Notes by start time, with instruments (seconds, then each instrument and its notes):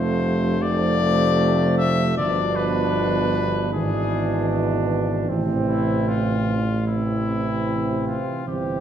Already playing: tuba F1, trombone C3, french horn F3, flugelhorn A3, trumpet C5
0.61 trombone C3, french horn F3, flugelhorn A3, trumpet D5
1.78 trumpet E5
2.16 tuba G1, trombone B2, french horn F3, flugelhorn D4, trumpet D5
2.56 trumpet B4
3.72 tuba G#1, trombone B2, french horn E3, flugelhorn D4, trumpet G#4
5.29 tuba A1, trombone C3, french horn E3, flugelhorn C4
5.69 trumpet E4
6.08 trumpet F4
6.86 trombone C3, french horn E3, flugelhorn C4, trumpet E4
8.08 trumpet F4
8.47 tuba G1, trombone C3, french horn E3, flugelhorn C4, trumpet G4